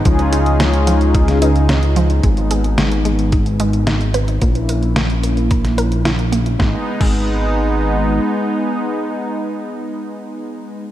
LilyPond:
<<
  \new Staff \with { instrumentName = "Analog polysynth" } { \time 4/4 \key gis \minor \tempo 4 = 110 <gis cis' dis' eis' gis'>2~ <gis cis' dis' eis' gis'>8 <gis cis' dis' eis' b'>8 r4 | r1 | r1 | r1 |
r1 | }
  \new Staff \with { instrumentName = "Analog synth pad" } { \time 4/4 \key gis \minor << { dis'1~ | dis'1 | r1 | <gis b dis'>1~ |
<gis b dis'>1 | } \\ { <cis cis'>1 | b1 | r1 | r1 |
r1 | } >> }
  \new Staff \with { instrumentName = "Synth arpeggio sound" } { \time 4/4 \key gis \minor eis16 r16 dis'16 r16 eis8 eis16 r16 dis'16 r16 dis'16 r16 cis'16 r16 eis16 r16 | gis16 r16 gis'16 r16 gis8 gis16 r16 dis'16 r16 gis16 r16 dis'16 r16 b'16 r16 | ais16 r16 ais'16 r16 ais8 ais16 r16 ais'16 r16 ais'16 r16 e'16 r16 ais16 r16 | gis16 r8 gis16 r2. |
r1 | }
  \new Staff \with { instrumentName = "Analog synth bass" } { \clef bass \time 4/4 \key gis \minor cis,1 | gis,,1 | ais,,1 | gis,,16 r8 gis,,2~ gis,,16 r4 |
r1 | }
  \new DrumStaff \with { instrumentName = "Drums" } \drummode { \time 4/4 <hh bd>16 hh16 hh16 hh16 <hh sn>16 hh16 hh16 hh16 <hh bd>16 <hh sn>16 hh16 hh16 <hh sn>16 hh16 hh16 hh16 | <hh bd>16 hh16 hh16 hh16 <hh sn>16 hh16 hh16 hh16 <hh bd>16 hh16 hh16 hh16 <hh sn>16 hh16 hh16 hh16 | <hh bd>16 hh16 hh16 hh16 <hh sn>16 hh16 hh16 hh16 <hh bd>16 <hh sn>16 hh16 hh16 <hh sn>16 hh16 hh16 hh16 | <bd sn>8. <cymc bd>16 r4 r4 r4 |
r4 r4 r4 r4 | }
>>